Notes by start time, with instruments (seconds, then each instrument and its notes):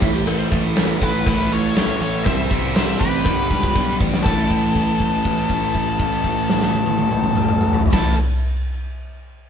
0.01 picked electric bass A1, distorted electric guitar A2 E3 A3 C#4 E4, electric slide guitar E4, kick, ride
0.15 electric slide guitar G4
0.26 picked electric bass A1, distorted electric guitar A2 E3 A3 C#4 E4, electric slide guitar A4, ride, cowbell
0.38 electric slide guitar C5
0.51 picked electric bass A1, distorted electric guitar A2 E3 A3 C#4 E4, electric slide guitar A4, kick, ride
0.76 distorted electric guitar A2 E3 A3 C#4 E4, snare, ride, cowbell
1.00 picked electric bass A1, distorted electric guitar A2 E3 A3 C#4 E4, lead electric guitar E4 B4, kick, ride
1.26 picked electric bass A1, distorted electric guitar A2 E3 A3 C#4 E4, kick, ride, cowbell
1.51 distorted electric guitar A2 E3 A3 C#4 E4, lead electric guitar A4 C#5, ride
1.64 snare
1.75 distorted electric guitar A2 E3 A3 C#4 E4, snare, ride, cowbell
1.99 picked electric bass A1, distorted electric guitar A2 E3 A3 C#4 E4, lead electric guitar A4 C#5, ride
2.25 picked electric bass C2, distorted electric guitar C3 E3 G3 C4 E4, lead electric guitar C5 E5, kick, ride, cowbell
2.49 picked electric bass C2, distorted electric guitar C3 E3 G3 C4 E4, kick, ride
2.73 distorted electric guitar C3 E3 G3 C4 E4, lead electric guitar C5 E5, snare, ride, cowbell
2.98 picked electric bass A1, distorted electric guitar C3 E3 G3 C4 E4, lead electric guitar G4 B4, kick, ride
3.24 picked electric bass G1, distorted electric guitar G2 D3 G3 B3 D4 G4, kick, cowbell
3.49 picked electric bass C#2, distorted electric guitar G2 D3 G3 B3 D4 G4, kick
3.63 kick
3.74 picked electric bass B1, distorted electric guitar G2 D3 G3 B3 D4 G4, kick, cowbell
3.99 picked electric bass A1, distorted electric guitar G2 D3 G3 B3 D4 G4, kick
4.14 snare
4.23 picked electric bass A1, distorted electric guitar A2 A3 C#4 E4, overdriven electric guitar E3, lead electric guitar E4 A4, electric slide guitar A4, kick, crash, cowbell
4.28 distorted electric guitar A4
4.51 kick, crash
4.64 crash
4.75 kick, crash
4.88 crash
5.00 kick, crash
5.13 crash
5.25 kick, crash
5.38 crash
5.50 kick, crash
5.62 crash
5.75 kick, crash
5.88 crash
6.00 kick, crash
6.12 crash
6.24 kick, crash
6.37 crash
6.50 snare
6.62 snare
6.73 high tom
6.86 high tom
6.99 high tom
7.11 mid tom
7.24 mid tom
7.36 mid tom
7.49 mid tom
7.61 mid tom
7.73 floor tom
7.86 floor tom
7.90 picked electric bass A1, distorted electric guitar A2 A3 C#4 E4 A4, overdriven electric guitar E3, lead electric guitar E4 A4, electric slide guitar A4, kick, snare, crash